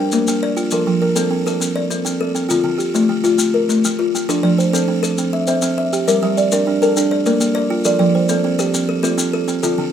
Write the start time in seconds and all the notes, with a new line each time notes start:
Already playing: A#4
0.00 G5
0.12 A#3, maracas
0.27 A#3, maracas
0.43 D5
0.57 F4, maracas
0.71 F3 A4 A#4, maracas
0.87 F3
1.02 A#4
1.16 C4 A4, maracas
1.31 C4
1.46 A4, maracas
1.60 C4, maracas
1.76 D5
1.90 C4, maracas
2.05 C4, maracas
2.21 A4
2.35 C4, maracas
2.49 D3 F4, maracas
2.64 D3
2.78 G4, maracas
2.94 A3 F4, maracas
3.09 A3
3.24 F4, maracas
3.38 A3, maracas
3.54 A#4
3.69 A3, maracas
3.84 A3, maracas
3.99 F4
4.15 A3, maracas
4.29 F3 D4 A4, maracas
4.43 F3 D5
4.58 C5, maracas
4.73 C4 A4, maracas
4.88 C4
5.03 A4, maracas
5.18 C4, maracas
5.33 E5
5.47 C4 C5 E5, maracas
5.62 C4, maracas
5.78 E5
5.93 G4, maracas
6.08 G3 A#4 E5, maracas
6.23 G3 E5
6.37 D5, maracas
6.52 D4 A#4, maracas
6.67 D4
6.82 A4 A#4, maracas
6.97 D4, maracas
7.11 D5
7.26 A#3 A#4 D5, maracas
7.40 A#3, maracas
7.55 D5
7.70 F4
7.84 F3 A4 D5, maracas
7.99 F3 D5
8.15 C5
8.29 C4 A4, maracas
8.44 C4
8.59 G4 A4, maracas
8.74 C4, maracas
8.89 A4
9.03 C4 F4 A4, maracas
9.18 C4, maracas
9.33 A4
9.48 C4, maracas
9.63 D3 F4 A4, maracas
9.78 D3